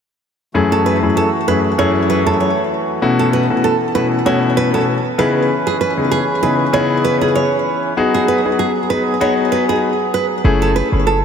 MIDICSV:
0, 0, Header, 1, 5, 480
1, 0, Start_track
1, 0, Tempo, 618557
1, 424, Time_signature, 4, 2, 24, 8
1, 8728, End_track
2, 0, Start_track
2, 0, Title_t, "Nylon-string guitar"
2, 0, Program_c, 0, 24
2, 559, Note_on_c, 0, 69, 71
2, 632, Note_off_c, 0, 69, 0
2, 667, Note_on_c, 0, 71, 74
2, 757, Note_off_c, 0, 71, 0
2, 907, Note_on_c, 0, 69, 78
2, 997, Note_off_c, 0, 69, 0
2, 1147, Note_on_c, 0, 71, 80
2, 1237, Note_off_c, 0, 71, 0
2, 1387, Note_on_c, 0, 73, 81
2, 1477, Note_off_c, 0, 73, 0
2, 1627, Note_on_c, 0, 71, 73
2, 1717, Note_off_c, 0, 71, 0
2, 1758, Note_on_c, 0, 69, 72
2, 1832, Note_off_c, 0, 69, 0
2, 1865, Note_on_c, 0, 73, 71
2, 2030, Note_off_c, 0, 73, 0
2, 2478, Note_on_c, 0, 69, 72
2, 2552, Note_off_c, 0, 69, 0
2, 2586, Note_on_c, 0, 71, 70
2, 2676, Note_off_c, 0, 71, 0
2, 2825, Note_on_c, 0, 69, 75
2, 2916, Note_off_c, 0, 69, 0
2, 3065, Note_on_c, 0, 71, 85
2, 3156, Note_off_c, 0, 71, 0
2, 3305, Note_on_c, 0, 73, 82
2, 3396, Note_off_c, 0, 73, 0
2, 3546, Note_on_c, 0, 71, 86
2, 3636, Note_off_c, 0, 71, 0
2, 3678, Note_on_c, 0, 69, 75
2, 3751, Note_off_c, 0, 69, 0
2, 4025, Note_on_c, 0, 71, 84
2, 4116, Note_off_c, 0, 71, 0
2, 4398, Note_on_c, 0, 68, 68
2, 4472, Note_off_c, 0, 68, 0
2, 4507, Note_on_c, 0, 71, 74
2, 4597, Note_off_c, 0, 71, 0
2, 4745, Note_on_c, 0, 68, 82
2, 4836, Note_off_c, 0, 68, 0
2, 4987, Note_on_c, 0, 71, 78
2, 5077, Note_off_c, 0, 71, 0
2, 5227, Note_on_c, 0, 73, 84
2, 5317, Note_off_c, 0, 73, 0
2, 5467, Note_on_c, 0, 71, 76
2, 5557, Note_off_c, 0, 71, 0
2, 5598, Note_on_c, 0, 68, 77
2, 5672, Note_off_c, 0, 68, 0
2, 5707, Note_on_c, 0, 73, 74
2, 5871, Note_off_c, 0, 73, 0
2, 6320, Note_on_c, 0, 68, 76
2, 6393, Note_off_c, 0, 68, 0
2, 6428, Note_on_c, 0, 71, 69
2, 6517, Note_off_c, 0, 71, 0
2, 6667, Note_on_c, 0, 68, 72
2, 6757, Note_off_c, 0, 68, 0
2, 6906, Note_on_c, 0, 71, 85
2, 6997, Note_off_c, 0, 71, 0
2, 7148, Note_on_c, 0, 73, 80
2, 7237, Note_off_c, 0, 73, 0
2, 7387, Note_on_c, 0, 71, 85
2, 7477, Note_off_c, 0, 71, 0
2, 7520, Note_on_c, 0, 68, 71
2, 7593, Note_off_c, 0, 68, 0
2, 7868, Note_on_c, 0, 71, 87
2, 7958, Note_off_c, 0, 71, 0
2, 8240, Note_on_c, 0, 69, 69
2, 8313, Note_off_c, 0, 69, 0
2, 8348, Note_on_c, 0, 71, 76
2, 8438, Note_off_c, 0, 71, 0
2, 8588, Note_on_c, 0, 69, 81
2, 8678, Note_off_c, 0, 69, 0
2, 8728, End_track
3, 0, Start_track
3, 0, Title_t, "Grand piano"
3, 0, Program_c, 1, 0
3, 422, Note_on_c, 1, 42, 84
3, 423, Note_on_c, 1, 57, 77
3, 424, Note_on_c, 1, 61, 80
3, 425, Note_on_c, 1, 64, 77
3, 426, Note_on_c, 1, 68, 97
3, 763, Note_off_c, 1, 42, 0
3, 764, Note_off_c, 1, 57, 0
3, 764, Note_off_c, 1, 61, 0
3, 765, Note_off_c, 1, 64, 0
3, 765, Note_off_c, 1, 68, 0
3, 794, Note_on_c, 1, 42, 67
3, 795, Note_on_c, 1, 57, 64
3, 797, Note_on_c, 1, 61, 63
3, 797, Note_on_c, 1, 64, 64
3, 798, Note_on_c, 1, 68, 79
3, 951, Note_off_c, 1, 42, 0
3, 951, Note_off_c, 1, 57, 0
3, 952, Note_off_c, 1, 61, 0
3, 952, Note_off_c, 1, 64, 0
3, 953, Note_off_c, 1, 68, 0
3, 1142, Note_on_c, 1, 42, 71
3, 1144, Note_on_c, 1, 57, 66
3, 1145, Note_on_c, 1, 61, 62
3, 1146, Note_on_c, 1, 64, 67
3, 1147, Note_on_c, 1, 68, 78
3, 1314, Note_off_c, 1, 42, 0
3, 1315, Note_off_c, 1, 57, 0
3, 1315, Note_off_c, 1, 61, 0
3, 1316, Note_off_c, 1, 64, 0
3, 1316, Note_off_c, 1, 68, 0
3, 1383, Note_on_c, 1, 42, 92
3, 1384, Note_on_c, 1, 57, 81
3, 1386, Note_on_c, 1, 61, 83
3, 1386, Note_on_c, 1, 64, 81
3, 1388, Note_on_c, 1, 68, 96
3, 1724, Note_off_c, 1, 42, 0
3, 1724, Note_off_c, 1, 57, 0
3, 1725, Note_off_c, 1, 61, 0
3, 1725, Note_off_c, 1, 64, 0
3, 1726, Note_off_c, 1, 68, 0
3, 1755, Note_on_c, 1, 42, 76
3, 1756, Note_on_c, 1, 57, 68
3, 1757, Note_on_c, 1, 61, 67
3, 1758, Note_on_c, 1, 64, 67
3, 1759, Note_on_c, 1, 68, 80
3, 1911, Note_off_c, 1, 42, 0
3, 1911, Note_off_c, 1, 57, 0
3, 1912, Note_off_c, 1, 61, 0
3, 1913, Note_off_c, 1, 64, 0
3, 1913, Note_off_c, 1, 68, 0
3, 2341, Note_on_c, 1, 47, 93
3, 2342, Note_on_c, 1, 57, 78
3, 2344, Note_on_c, 1, 61, 79
3, 2344, Note_on_c, 1, 64, 78
3, 2346, Note_on_c, 1, 66, 101
3, 2683, Note_off_c, 1, 47, 0
3, 2683, Note_off_c, 1, 57, 0
3, 2684, Note_off_c, 1, 61, 0
3, 2684, Note_off_c, 1, 64, 0
3, 2685, Note_off_c, 1, 66, 0
3, 2713, Note_on_c, 1, 47, 68
3, 2715, Note_on_c, 1, 57, 66
3, 2716, Note_on_c, 1, 61, 66
3, 2717, Note_on_c, 1, 64, 64
3, 2719, Note_on_c, 1, 66, 79
3, 2870, Note_off_c, 1, 47, 0
3, 2871, Note_off_c, 1, 57, 0
3, 2871, Note_off_c, 1, 61, 0
3, 2872, Note_off_c, 1, 64, 0
3, 2873, Note_off_c, 1, 66, 0
3, 3061, Note_on_c, 1, 47, 71
3, 3062, Note_on_c, 1, 57, 64
3, 3063, Note_on_c, 1, 61, 66
3, 3064, Note_on_c, 1, 64, 66
3, 3065, Note_on_c, 1, 66, 78
3, 3233, Note_off_c, 1, 47, 0
3, 3234, Note_off_c, 1, 57, 0
3, 3234, Note_off_c, 1, 61, 0
3, 3235, Note_off_c, 1, 64, 0
3, 3235, Note_off_c, 1, 66, 0
3, 3302, Note_on_c, 1, 47, 89
3, 3303, Note_on_c, 1, 57, 82
3, 3304, Note_on_c, 1, 61, 84
3, 3305, Note_on_c, 1, 64, 82
3, 3306, Note_on_c, 1, 66, 96
3, 3643, Note_off_c, 1, 47, 0
3, 3644, Note_off_c, 1, 57, 0
3, 3644, Note_off_c, 1, 61, 0
3, 3645, Note_off_c, 1, 64, 0
3, 3645, Note_off_c, 1, 66, 0
3, 3673, Note_on_c, 1, 47, 73
3, 3675, Note_on_c, 1, 57, 66
3, 3676, Note_on_c, 1, 61, 68
3, 3677, Note_on_c, 1, 64, 68
3, 3678, Note_on_c, 1, 66, 80
3, 3830, Note_off_c, 1, 47, 0
3, 3831, Note_off_c, 1, 57, 0
3, 3831, Note_off_c, 1, 61, 0
3, 3832, Note_off_c, 1, 64, 0
3, 3832, Note_off_c, 1, 66, 0
3, 4021, Note_on_c, 1, 49, 93
3, 4022, Note_on_c, 1, 59, 82
3, 4024, Note_on_c, 1, 63, 83
3, 4025, Note_on_c, 1, 64, 81
3, 4026, Note_on_c, 1, 68, 95
3, 4245, Note_off_c, 1, 49, 0
3, 4246, Note_off_c, 1, 59, 0
3, 4247, Note_off_c, 1, 63, 0
3, 4247, Note_off_c, 1, 64, 0
3, 4248, Note_off_c, 1, 68, 0
3, 4633, Note_on_c, 1, 49, 71
3, 4636, Note_on_c, 1, 59, 66
3, 4636, Note_on_c, 1, 63, 64
3, 4637, Note_on_c, 1, 64, 64
3, 4638, Note_on_c, 1, 68, 75
3, 4790, Note_off_c, 1, 49, 0
3, 4791, Note_off_c, 1, 59, 0
3, 4791, Note_off_c, 1, 63, 0
3, 4792, Note_off_c, 1, 64, 0
3, 4793, Note_off_c, 1, 68, 0
3, 4983, Note_on_c, 1, 49, 71
3, 4984, Note_on_c, 1, 59, 66
3, 4985, Note_on_c, 1, 63, 65
3, 4985, Note_on_c, 1, 64, 62
3, 4987, Note_on_c, 1, 68, 77
3, 5154, Note_off_c, 1, 49, 0
3, 5155, Note_off_c, 1, 59, 0
3, 5155, Note_off_c, 1, 63, 0
3, 5156, Note_off_c, 1, 64, 0
3, 5156, Note_off_c, 1, 68, 0
3, 5220, Note_on_c, 1, 49, 91
3, 5222, Note_on_c, 1, 59, 85
3, 5223, Note_on_c, 1, 63, 82
3, 5225, Note_on_c, 1, 64, 82
3, 5225, Note_on_c, 1, 68, 106
3, 5562, Note_off_c, 1, 49, 0
3, 5563, Note_off_c, 1, 59, 0
3, 5564, Note_off_c, 1, 63, 0
3, 5564, Note_off_c, 1, 64, 0
3, 5565, Note_off_c, 1, 68, 0
3, 5596, Note_on_c, 1, 49, 76
3, 5596, Note_on_c, 1, 59, 67
3, 5597, Note_on_c, 1, 63, 65
3, 5599, Note_on_c, 1, 64, 66
3, 5599, Note_on_c, 1, 68, 81
3, 5751, Note_off_c, 1, 49, 0
3, 5752, Note_off_c, 1, 59, 0
3, 5752, Note_off_c, 1, 63, 0
3, 5753, Note_off_c, 1, 64, 0
3, 5753, Note_off_c, 1, 68, 0
3, 6184, Note_on_c, 1, 59, 85
3, 6185, Note_on_c, 1, 63, 82
3, 6187, Note_on_c, 1, 66, 85
3, 6189, Note_on_c, 1, 68, 103
3, 6524, Note_off_c, 1, 59, 0
3, 6525, Note_off_c, 1, 63, 0
3, 6526, Note_off_c, 1, 66, 0
3, 6527, Note_off_c, 1, 68, 0
3, 6557, Note_on_c, 1, 59, 69
3, 6559, Note_on_c, 1, 63, 63
3, 6560, Note_on_c, 1, 66, 64
3, 6562, Note_on_c, 1, 68, 78
3, 6712, Note_off_c, 1, 59, 0
3, 6713, Note_off_c, 1, 63, 0
3, 6713, Note_off_c, 1, 66, 0
3, 6714, Note_off_c, 1, 68, 0
3, 6904, Note_on_c, 1, 59, 73
3, 6906, Note_on_c, 1, 63, 64
3, 6907, Note_on_c, 1, 66, 67
3, 6908, Note_on_c, 1, 68, 79
3, 7075, Note_off_c, 1, 59, 0
3, 7076, Note_off_c, 1, 63, 0
3, 7076, Note_off_c, 1, 66, 0
3, 7077, Note_off_c, 1, 68, 0
3, 7144, Note_on_c, 1, 59, 93
3, 7145, Note_on_c, 1, 63, 81
3, 7147, Note_on_c, 1, 66, 85
3, 7148, Note_on_c, 1, 68, 96
3, 7484, Note_off_c, 1, 59, 0
3, 7485, Note_off_c, 1, 63, 0
3, 7486, Note_off_c, 1, 66, 0
3, 7486, Note_off_c, 1, 68, 0
3, 7515, Note_on_c, 1, 59, 72
3, 7517, Note_on_c, 1, 63, 67
3, 7518, Note_on_c, 1, 66, 69
3, 7520, Note_on_c, 1, 68, 79
3, 7671, Note_off_c, 1, 59, 0
3, 7672, Note_off_c, 1, 63, 0
3, 7672, Note_off_c, 1, 66, 0
3, 7673, Note_off_c, 1, 68, 0
3, 8103, Note_on_c, 1, 57, 90
3, 8104, Note_on_c, 1, 61, 82
3, 8106, Note_on_c, 1, 64, 80
3, 8108, Note_on_c, 1, 68, 104
3, 8444, Note_off_c, 1, 57, 0
3, 8444, Note_off_c, 1, 61, 0
3, 8445, Note_off_c, 1, 64, 0
3, 8446, Note_off_c, 1, 68, 0
3, 8473, Note_on_c, 1, 57, 72
3, 8474, Note_on_c, 1, 61, 67
3, 8476, Note_on_c, 1, 64, 66
3, 8478, Note_on_c, 1, 68, 83
3, 8630, Note_off_c, 1, 57, 0
3, 8631, Note_off_c, 1, 61, 0
3, 8632, Note_off_c, 1, 64, 0
3, 8633, Note_off_c, 1, 68, 0
3, 8728, End_track
4, 0, Start_track
4, 0, Title_t, "Accordion"
4, 0, Program_c, 2, 21
4, 423, Note_on_c, 2, 57, 68
4, 424, Note_on_c, 2, 52, 72
4, 424, Note_on_c, 2, 66, 85
4, 2324, Note_off_c, 2, 57, 0
4, 2324, Note_off_c, 2, 66, 0
4, 2344, Note_on_c, 2, 59, 71
4, 2344, Note_on_c, 2, 69, 85
4, 3993, Note_off_c, 2, 52, 0
4, 4007, Note_off_c, 2, 59, 0
4, 4007, Note_off_c, 2, 69, 0
4, 4023, Note_on_c, 2, 52, 78
4, 4023, Note_on_c, 2, 61, 71
4, 4023, Note_on_c, 2, 71, 88
4, 6162, Note_off_c, 2, 52, 0
4, 6162, Note_off_c, 2, 61, 0
4, 6162, Note_off_c, 2, 71, 0
4, 6183, Note_on_c, 2, 54, 80
4, 6183, Note_on_c, 2, 59, 70
4, 6184, Note_on_c, 2, 68, 83
4, 8084, Note_off_c, 2, 54, 0
4, 8084, Note_off_c, 2, 59, 0
4, 8085, Note_off_c, 2, 68, 0
4, 8728, End_track
5, 0, Start_track
5, 0, Title_t, "808-style bass"
5, 0, Program_c, 3, 38
5, 8104, Note_on_c, 3, 30, 117
5, 8396, Note_off_c, 3, 30, 0
5, 8475, Note_on_c, 3, 30, 95
5, 8728, Note_off_c, 3, 30, 0
5, 8728, End_track
0, 0, End_of_file